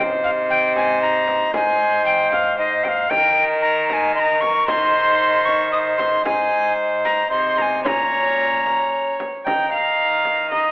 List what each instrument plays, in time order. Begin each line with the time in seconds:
Already playing: cello C3, bassoon D#4, viola C5
0.24 recorder F5
0.50 recorder G5
0.76 recorder G#5, frame drum
1.02 recorder A#5
1.28 frame drum
1.54 cello G#2, bassoon D#4, viola C5, recorder G#5, frame drum
2.05 recorder G5
2.32 recorder F5, frame drum
2.59 bassoon D#4, viola C5, recorder D#5
2.84 recorder G5, frame drum
2.88 recorder F5
3.10 cello D#3, bassoon D#4, viola A#4, recorder G5, frame drum
3.62 recorder A#5
3.88 recorder A#5, frame drum
3.93 recorder G#5
4.15 bassoon D#4, viola A#4, recorder C6
4.20 recorder A#5
4.41 recorder C#6, frame drum
4.67 cello D#3, bassoon D#4, viola C5, recorder C6, frame drum
5.45 recorder C#6, frame drum
5.72 bassoon D#4, viola C5, recorder D#6
5.98 recorder C6, frame drum
6.25 cello G#2, bassoon D#4, viola C5, recorder G#5, frame drum
7.05 recorder A#5, frame drum
7.30 cello C3, bassoon D#4, viola C5, recorder C6
7.58 recorder A#5, frame drum
7.62 recorder G#5
7.84 cello A#2, bassoon C#4, viola C#5, recorder A#5 C6, frame drum
8.66 frame drum
9.20 frame drum
9.46 cello D#3, bassoon D#4, viola G5, recorder A#5, frame drum
9.73 viola F5
10.25 frame drum
10.51 bassoon D#4, viola D#5, recorder A#5, frame drum